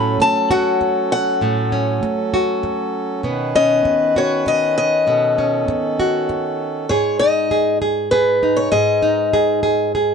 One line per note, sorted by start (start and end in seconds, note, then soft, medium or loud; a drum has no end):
0.00 0.20 A2 medium
0.00 3.21 F#3 medium
0.00 1.38 A3 medium
0.00 1.72 C#4 medium
0.00 6.86 C#4 medium
0.00 0.50 E4 medium
0.00 3.21 A4 medium
0.00 0.18 B5 medium
0.20 0.52 A5 medium
0.20 muted nylon-string guitar stroke medium
0.51 2.33 F#4 medium
0.51 1.11 F#5 medium
0.81 muted nylon-string guitar stroke medium
1.12 2.30 F#5 medium
1.41 2.02 A2 medium
1.41 3.21 A3 medium
1.72 3.26 C#4 medium
2.03 muted nylon-string guitar stroke medium
2.34 4.16 F#4 medium
2.63 muted nylon-string guitar stroke medium
3.23 3.85 B2 medium
3.23 6.86 D#3 medium
3.23 5.07 B3 medium
3.23 5.05 B4 medium
3.55 5.04 C#4 medium
3.55 4.17 D#5 medium
3.85 muted nylon-string guitar stroke medium
4.16 5.04 F#4 medium
4.16 4.47 C#5 medium
4.46 4.76 D#5 medium
4.46 muted nylon-string guitar stroke medium
4.78 6.25 D#5 medium
5.07 5.67 B2 medium
5.07 6.86 B3 medium
5.07 6.89 A4 medium
5.38 6.86 C#4 medium
5.68 muted nylon-string guitar stroke medium
6.00 6.87 F#4 medium
6.29 muted nylon-string guitar stroke medium
6.89 8.69 G#2 medium
6.89 7.51 G#4 medium
6.89 7.19 C#5 medium
7.19 8.42 D#4 medium
7.19 7.77 D#5 medium
7.51 7.81 G#4 medium
7.82 8.12 G#4 medium
8.11 8.72 G#4 soft
8.11 8.58 B4 medium
8.43 8.69 D#4 soft
8.57 8.71 C#5 medium
8.72 10.14 G#2 medium
8.72 9.33 G#4 medium
8.72 9.90 D#5 medium
9.02 10.14 D#4 medium
9.33 9.63 G#4 medium
9.63 9.94 G#4 medium
9.95 10.14 G#4 medium